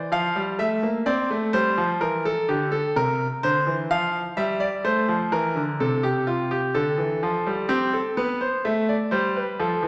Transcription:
Already playing: D5
0.12 F3 F5
0.36 G3
0.59 A3 E5
0.83 A#3
1.06 C4 D5
1.30 A3
1.53 G3 C5
1.78 F3
2.01 E3 A#4
2.25 A4
2.48 D3 G4
2.72 A4
2.96 C3 A#4
3.43 D3 C5
3.67 E3
3.91 F3 F5
4.37 G3 E5
4.60 D5
4.84 A3 C5
5.09 F3
5.32 E3 A#4
5.55 D3
5.80 C3 A4
6.03 G4
6.27 F4
6.51 G4
6.75 D3 A4
6.98 E3
7.23 F3
7.46 G3
7.68 C4 G4
7.93 A4
8.17 B3 B4
8.41 C5
8.65 A3 E5
8.89 D5
9.11 G3 C5
9.36 B4
9.60 F3 A4
9.83 E3

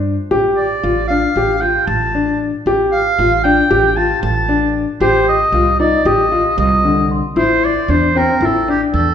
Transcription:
Already playing: G2 D4 C5
0.31 A1 G4
0.57 D5
0.83 A1 F4
1.08 D4 F5
1.36 A1 G4
1.61 F4 G5
1.87 A1 A5
2.15 D4
2.66 A1 G4
2.92 F5
3.19 A1 F4
3.43 D4 G5
3.71 A1 G4
3.96 F4 A5
4.21 A1 A5
4.49 D4
5.00 A1 G4 C5
5.28 D#5
5.52 C2 F4
5.80 D#4 D5
6.05 A1 G4 D#5
6.32 F4
6.58 C2 D#5
6.85 D3
7.11 C6
7.36 A1 E4 C5
7.65 D5
7.88 E2 D4 C5
8.15 C4 A#4 G5
8.41 A1 E4
8.45 A4
8.68 D4 G4
8.93 E2 A4

